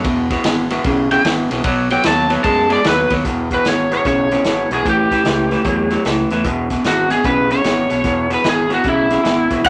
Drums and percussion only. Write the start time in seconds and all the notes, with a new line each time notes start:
0.04 kick, ride
0.30 kick, snare, ride
0.44 snare, ride
0.70 snare, ride
0.84 kick, snare, ride
1.11 snare, ride
1.25 snare, ride
1.51 snare, ride
1.64 kick, ride
1.90 snare, ride
2.04 snare, ride
2.30 snare, ride
2.44 kick, ride
2.70 snare, ride
2.84 snare, ride
3.10 kick, snare, ride
3.25 kick, snare, closed hi-hat
3.51 kick, snare, closed hi-hat
3.65 snare, closed hi-hat
3.91 snare, closed hi-hat
4.05 kick, snare, closed hi-hat
4.31 snare, closed hi-hat
4.44 snare, closed hi-hat
4.71 snare, closed hi-hat
4.85 kick, closed hi-hat
5.11 kick, snare, closed hi-hat
5.25 snare, closed hi-hat
5.51 snare, closed hi-hat
5.64 kick, closed hi-hat
5.90 snare, closed hi-hat
6.05 snare, closed hi-hat
6.30 snare, closed hi-hat
6.44 kick, closed hi-hat
6.70 kick, snare, closed hi-hat
6.84 snare, closed hi-hat
7.10 snare, closed hi-hat
7.24 kick, closed hi-hat
7.51 snare, closed hi-hat
7.64 snare, closed hi-hat
7.90 snare, closed hi-hat
8.04 kick, snare, closed hi-hat
8.30 snare, closed hi-hat
8.44 snare, closed hi-hat
8.70 snare, closed hi-hat
8.84 kick, closed hi-hat
9.10 snare, closed hi-hat
9.25 snare, closed hi-hat
9.50 kick, snare, closed hi-hat
9.64 kick, closed hi-hat